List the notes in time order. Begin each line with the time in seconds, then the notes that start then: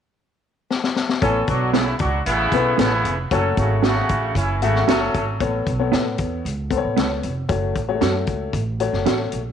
0.71 snare
0.84 snare
0.96 snare
1.09 snare
1.21 A1 E3 B3 C#4 A4 C#5, kick, closed hi-hat
1.47 B1 F#3 D4 F#4, kick, closed hi-hat
1.73 C#3 B3 E4 A4 C#5, snare, closed hi-hat
1.99 C#2 F#3 D4 F#4, kick, closed hi-hat
2.26 A1 C#3 B3 E4, closed hi-hat
2.52 B1 B3 A4 B4, kick, closed hi-hat
2.77 A1 C#3 B3 E4 A4 C#5, snare, closed hi-hat
3.04 F1, closed hi-hat
3.31 F#1 F#3 A3 C#4 F#4 A4 C#5, kick, closed hi-hat
3.57 G#1 C#3 A3 F#4, kick, closed hi-hat
3.82 C#3 A3 C#4 F#4 A4 C#5, snare, closed hi-hat
4.09 A1, kick, closed hi-hat
4.35 F#1 E3 C#4 E4, kick, closed hi-hat
4.61 G#1 C#3 A3 F#4 E5, closed hi-hat
4.75 snare
4.88 F#1 F#3 C#4 F#4 A4 C#5, snare, closed hi-hat
5.14 G#1, kick, closed hi-hat
5.40 A1 B3 A4 C#5, kick, closed hi-hat
5.67 B1, kick, closed hi-hat
5.80 B3 A4 C#5
5.92 A2 B3 E4 A4 C#5, snare, closed hi-hat
6.18 E2, kick, closed hi-hat
6.45 C#2, closed hi-hat
6.70 B3 A4 C5, kick, closed hi-hat
6.77 C#5
6.85 A1
6.96 C#2 B3 E4 A4 C#5, snare, closed hi-hat
7.23 F1, closed hi-hat
7.49 F#1 A3 F#4 C#5, kick, closed hi-hat
7.75 A1, kick, closed hi-hat
7.88 G#3 F#4 C#5
7.95 A3
8.01 F#2 C#4 F#4 A4 C#5, snare, closed hi-hat
8.27 C#2, kick, closed hi-hat
8.53 A1, kick, closed hi-hat
8.80 A3 F#4 C#5, closed hi-hat
8.93 F#1, snare
9.06 A1 C#4 F#4 A4 C#5, snare, closed hi-hat
9.32 A#1, closed hi-hat